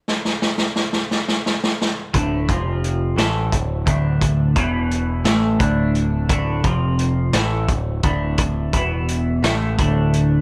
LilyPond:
<<
  \new Staff \with { instrumentName = "Clean electric guitar" } { \clef bass \time 6/8 \key d \dorian \tempo 4. = 58 r2. | <d, a, d>8 <f, c f>4 <a, e a>8 <d, a,>8 <d, a, d>8~ | <d, a, d>8 <e, b, e>4 <a, e a>8 <d, a, d>4 | <d, a, d>8 <f, c f>4 <a, e a>8 <d, a,>8 <d, a, d>8~ |
<d, a, d>8 <e, b, e>4 <a, e a>8 <d, a, d>4 | }
  \new Staff \with { instrumentName = "Picked electric bass" } { \clef bass \time 6/8 \key d \dorian r2. | d,,8 f,,4 a,,8 d,,8 d,,8~ | d,,8 e,,4 a,,8 d,,4 | d,,8 f,,4 a,,8 d,,8 d,,8~ |
d,,8 e,,4 a,,8 d,,4 | }
  \new DrumStaff \with { instrumentName = "Drums" } \drummode { \time 6/8 sn16 sn16 sn16 sn16 sn16 sn16 sn16 sn16 sn16 sn16 sn8 | <hh bd>8 <hh bd>8 hh8 <hh sn>8 <hh bd>8 <hh bd>8 | <hh bd>8 <hh bd>8 hh8 <hh sn>8 <hh bd>8 hh8 | <hh bd>8 <hh bd>8 hh8 <hh sn>8 <hh bd>8 <hh bd>8 |
<hh bd>8 <hh bd>8 hh8 <hh sn>8 <hh bd>8 hh8 | }
>>